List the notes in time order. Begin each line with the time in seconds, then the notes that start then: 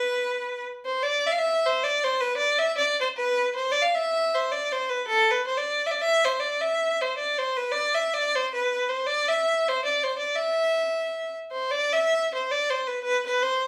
Already playing: B4
0.85 C5
1.03 D5
1.27 E5
1.31 F5
1.39 E5
1.66 C5
1.83 D5
2.04 C5
2.21 B4
2.37 D5
2.59 E5
2.77 D5
3.01 C5
3.17 B4
3.55 C5
3.72 D5
3.82 F5
3.95 E5
4.34 C5
4.52 D5
4.72 C5
4.89 B4
5.07 A4
5.30 B4
5.47 C5
5.57 D5
5.87 E5
5.91 D5
6.01 E5
6.25 C5
6.40 D5
6.61 E5
7.01 C5
7.17 D5
7.38 C5
7.57 B4
7.72 D5
7.94 E5
8.13 D5
8.35 C5
8.54 B4
8.89 C5
9.07 D5
9.29 E5
9.69 C5
9.85 D5
10.04 C5
10.18 D5
10.36 E5
11.51 C5
11.71 D5
11.93 E5
12.34 C5
12.51 D5
12.70 C5
12.87 B4
13.04 B4
13.26 B4
13.42 C5